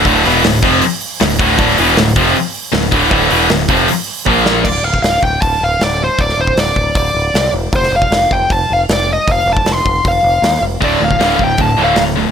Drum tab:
CC |----------------|----------------|----------------|x---------------|
HH |o-o-o-o-o-o-o-o-|o-o-o-o-o-o-o-o-|o-o-o-o-o-o-----|----o---o---o---|
SD |----o-------o---|----o-------o---|----o---------o-|----o-------o---|
BD |o-----o-------o-|o-----o-------o-|o-----o-----o---|o--o--o-o-------|

CC |----------------|----------------|----------------|----------------|
HH |o---o---o---o---|o---o---o---o---|o---o---o---o---|o---o---o---o---|
SD |-o--o-------o---|-o--o-------o---|----o-------o---|----o-------o---|
BD |o--o--o-o-------|o--o--o-o-------|o--o--o-o-------|o--o--o-o-------|